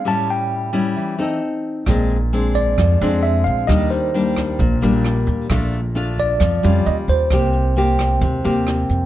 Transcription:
<<
  \new Staff \with { instrumentName = "Tine electric piano" } { \time 4/4 \key bes \lydian \tempo 4 = 132 a''8 g''2 r4. | r4. d''4. e''8 f''8 | ees''8 c''2 r4. | r4. d''4. ees''8 c''8~ |
c''2. r4 | }
  \new Staff \with { instrumentName = "Nylon-string guitar" } { \time 4/4 \key bes \lydian << { <g cis' e'>4. <g cis' e'>4 <c' ees' a'>4. | <aes c' d'>8 r8 <aes c' d'>4. <aes c' d'>4. | <g bes d'>4 <g bes d'>4 r8 <g bes d'>4. | <a d' f'>8 r8 <a d' f'>4 r8 <g des' f'>4. |
<bes c' g'>4 <bes c' g'>4. <bes c' g'>4. | } \\ { a,2 e4 r4 | bes,2 f2 | ees2 bes,2 | bes,2 f4 r4 |
c2 c2 | } >> }
  \new Staff \with { instrumentName = "Upright bass" } { \clef bass \time 4/4 \key bes \lydian r1 | bes,,2 f,8 f,4 bes,,8 | ees,2 bes,,8 bes,,4 ees,8 | bes,,2 f,8 f,8 ees,8 ees,8 |
c,2 ees,8 ees,4 f,8 | }
  \new DrumStaff \with { instrumentName = "Drums" } \drummode { \time 4/4 r4 r4 r4 r4 | <hh bd ss>8 hh8 hh8 <hh bd>8 <hh bd ss>8 hh8 hh8 <hh bd>8 | <hh bd ss>8 hh8 hh8 <hh bd ss>8 <hh bd>8 hh8 <hh ss>8 <hh bd>8 | <hh bd ss>8 hh8 hh8 <hh bd>8 <hh bd ss>8 hh8 hh8 <hh bd>8 |
<hh bd ss>8 hh8 hh8 <hh bd ss>8 <hh bd>8 hh8 <hh ss>8 <hh bd>8 | }
>>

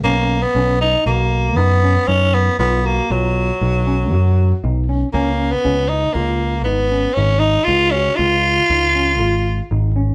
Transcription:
<<
  \new Staff \with { instrumentName = "Tine electric piano" } { \time 5/4 \key ces \lydian \tempo 4 = 118 des'4 des'8 dis'8 fis'4 dis'8 des'8 dis'4 | f'8 fis'8 f'4 dis'8 des'8 fis'4 dis'8 des'8 | des'4 des'8 ees'8 f'4 ees'8 des'8 ees'4 | f'8 ges'8 f'4 ees'8 des'8 f'4 ees'8 des'8 | }
  \new Staff \with { instrumentName = "Tenor saxophone" } { \time 5/4 \key ces \lydian ais8. b8. dis'8 ais4 b4 des'8 b8 | b8 ais8 fis2. r4 | bes8. ces'8. ees'8 bes4 ces'4 des'8 ees'8 | f'8 des'8 f'2. r4 | }
  \new Staff \with { instrumentName = "Picked electric bass" } { \clef bass \time 5/4 \key ces \lydian b,,4 b,,4 b,,4 fis,4 fis,4 | b,,4 b,,4 b,,4 fis,4 b,,4 | des,4 des,4 des,4 aes,,4 aes,,4 | des,4 des,4 des,4 aes,,4 aes,,4 | }
>>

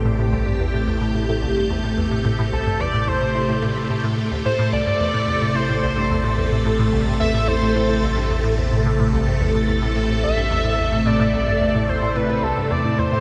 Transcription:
<<
  \new Staff \with { instrumentName = "Analog synth lead" } { \time 4/4 \key a \minor \tempo 4 = 109 r1 | r8 a'8 d''8 c''4 r4. | c''8 d''4. c''8 c''4 r8 | r4 e''8 c''4. r4 |
r2 r8 e''4. | d''4. c''8 b'8 a'8 d''8 c''8 | }
  \new Staff \with { instrumentName = "String machine" } { \time 4/4 \key a \minor << { g'1~ | g'1 | a'1~ | a'1~ |
a'1~ | a'1 | } \\ { <c a>1~ | <c a>1~ | <c a>1~ | <c a>1~ |
<c a>1~ | <c a>1 | } >> }
  \new Staff \with { instrumentName = "Synth arpeggio sound" } { \clef bass \time 4/4 \key a \minor a,16 a,16 c,16 g,16 e,16 a,16 e,16 a,16 a,16 a,16 c,16 g,16 e,16 a,16 e,16 a,16 | a,16 a,16 c,16 g,16 e,16 a,16 e,16 a,16 a,16 a,16 a,16 e16 a,16 a,16 a,16 d,16 | a,16 a,16 c,16 g,16 e,16 a,16 e,16 a,16 a,16 a,16 c,16 g,16 e,16 a,16 e,16 a,16 | a,16 a,16 c,16 g,16 e,16 a,16 e,16 a,16 a,16 a,16 c,16 g,16 e,16 a,16 e,16 a,16 |
a,16 a,16 c,16 g,16 e,16 a,16 e,16 a,16 a,16 a,16 c,16 g,16 e,16 a,16 e,16 a,16 | a,16 a,16 c,16 g,16 e,16 a,16 e,16 a,16 a,16 a,16 c,16 g,16 e,16 a,16 e,16 a,16 | }
  \new Staff \with { instrumentName = "Analog synth bass" } { \clef bass \time 4/4 \key a \minor a,,1~ | a,,1 | a,,1~ | a,,1~ |
a,,1~ | a,,1 | }
>>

